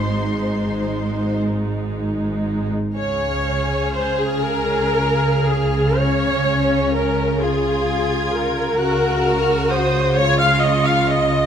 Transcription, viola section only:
Already playing: G#3 D#4
2.97 C#5
3.95 C5
4.20 G#4
4.44 A#4
5.47 G#4
5.97 C#5
6.94 A#4
7.41 G#4
8.32 A#4
9.70 C5
10.16 C#5
10.40 F5
10.62 D#5
10.86 F5
11.07 D#5

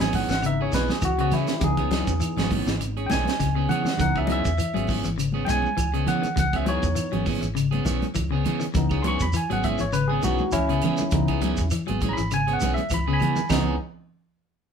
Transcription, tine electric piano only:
Already playing: E3 B3 D#4
0.01 G#5
0.15 F#5
0.31 F#5
0.45 E3 B3 D#4 E5
0.62 C#5
0.74 B4
0.90 G#4
1.05 F#4
1.21 F#4
1.33 E4
1.60 E3 B3 G4
1.64 D#4 G#4
3.06 G5
3.11 G#5
3.69 F#5
3.99 E3 B3 D#4 F#5
4.18 E5
4.27 D#5
4.32 E5
5.45 G5
5.50 G#5
6.08 F#5
6.39 F#5
6.56 E5
6.65 E3 B3 C5 C#5
6.69 D#4
8.76 E3 B3 D#4
9.02 C6
9.07 C#6
9.22 B5
9.36 G#5
9.52 F#5
9.64 E5
9.81 C#5
9.93 B4
10.08 G#4
10.22 E3 B3 D#4 F#4
10.52 C#4 E4
11.12 E3 B3 D#4
12.09 A#5
12.13 B5
12.34 G#5
12.53 F#5
12.74 E5
12.94 B5
13.13 G#5 B5
13.50 E3 G#3 B3 D#4

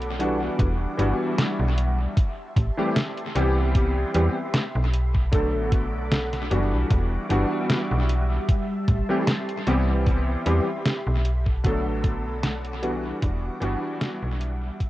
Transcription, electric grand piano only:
Already playing: D3 F#3 A3 B3 A4
0.19 E3 G3 B3 D4 F#4
0.97 E3 G3 B3 D4 F#4
2.77 E3 G3 A3 C4 G4
3.35 E3 G3 B3 C4 G4
4.14 E3 G3 B3 C4 G4
5.32 D3 F#3 A3 B3 A4
6.51 E3 G3 B3 D4 F#4
7.29 E3 G3 B3 D4 F#4
9.09 E3 G3 A3 C4 G4
9.67 E3 G3 B3 C4 G4
10.46 E3 G3 B3 C4 G4
11.63 D3 F#3 A3 B3 A4
12.82 E3 G3 B3 D4 F#4
13.60 E3 G3 B3 D4 F#4

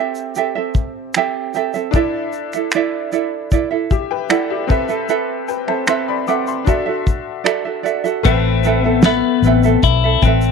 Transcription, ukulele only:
Already playing: C4 G4 A4
0.00 E5
0.36 C4 G4 A4 E5
0.55 C4 A4 E5
1.16 C4 G4 A4 E5
1.55 C4 G4 A4 E5
1.74 C4 A4 E5
1.95 E4 A4 D5 E5
2.54 E4 A4 E5
2.75 E4 A4 D5 E5
3.12 E4 A4 D5 E5
3.52 E4 A4 D5 E5
3.71 E4 A4 E5
4.29 E4 A4 D5 E5
4.68 C4 A4 B4 E5
4.89 C4 A4 E5
5.09 C4 A4 B4 E5
5.67 C4 A4 E5
5.88 C4 A4 B4 E5
6.27 C4 A4 B4 E5
6.67 F#4 A4 D5 E5
6.86 F#4 A4 E5
7.44 F#4 A4 D5 E5
7.65 F#4 A4 E5
7.83 F#4 A4 D5 E5
8.04 F#4 A4 E5
8.25 C4 A4 B4 E5
8.65 C4 A4 B4 E5
8.84 C4 A4 E5
9.04 A4 B4 E5
9.44 C4 A4 B4 E5
9.64 C4 A4 E5
10.04 C4 A4 E5
10.25 C4 A4 B4 E5

